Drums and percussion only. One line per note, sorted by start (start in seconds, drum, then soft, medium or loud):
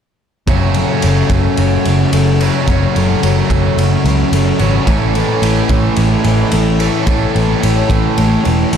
0.47 kick medium
0.47 ride medium
0.74 ride medium
1.02 ride medium
1.29 kick medium
1.29 ride medium
1.57 ride medium
1.85 ride medium
2.13 ride medium
2.40 ride medium
2.67 kick medium
2.67 ride medium
2.96 ride medium
3.23 ride medium
3.50 kick medium
3.50 ride medium
3.78 ride medium
4.05 ride soft
4.33 ride medium
4.59 ride soft
4.87 kick medium
4.87 ride medium
5.15 ride medium
5.43 ride medium
5.69 kick medium
5.69 ride medium
5.96 ride medium
6.24 ride medium
6.52 ride medium
6.80 ride medium
7.07 kick medium
7.07 ride medium
7.36 ride medium
7.63 ride medium
7.90 kick medium
7.90 ride medium
8.18 ride medium
8.45 ride soft
8.73 ride medium